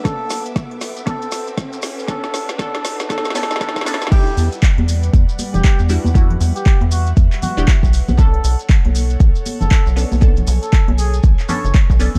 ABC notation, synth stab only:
X:1
M:4/4
L:1/16
Q:"Swing 16ths" 1/4=118
K:Em
V:1 name="Synth stab"
[B,^CDA]8 [B,CDA]8 | [B,^CDA]4 [B,CDA]4 [B,CDA]2 [B,CDA]2 [B,CDA]2 [B,CDA]2 | [G,DEG]12- [G,DEG]2 [G,DEF]2 | [G,DEF]8- [G,DEF]2 z [G,DEG]3 z2 |
[B,^CDA]12- [B,CDA]2 [B,CDA]2 | [B,^CDA]8- [B,CDA]2 [B,CDA]4 [B,CDA]2 |]